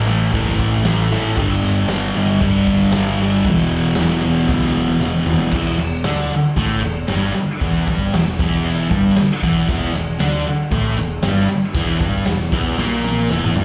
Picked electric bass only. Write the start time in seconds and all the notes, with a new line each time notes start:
0.06 A1
0.32 F#1
0.59 A1
0.84 A1
1.09 G#1
1.37 G1
1.61 G1
1.87 G1
2.15 G1
2.41 G1
2.67 G1
2.92 G1
3.18 G1
3.45 E1
3.71 E1
3.97 E1
4.23 E1
4.49 D2
4.74 E1
5.01 E1
5.27 E1
5.52 E1
5.79 E1
6.05 D2
6.30 muted picked electric bass stroke
6.57 A1
6.82 E1
7.09 G1
7.36 muted picked electric bass stroke
7.61 E1
7.87 G1
8.13 E1
8.39 E1
8.91 G1
9.18 muted picked electric bass stroke
9.43 E1
9.68 E1
9.94 E1
10.20 D2
10.46 muted picked electric bass stroke
10.71 A1
10.97 E1
11.22 G1
11.49 muted picked electric bass stroke
11.75 E1
12.00 G1
12.26 E1
12.51 E1
12.78 A#1
13.30 E1
13.55 G1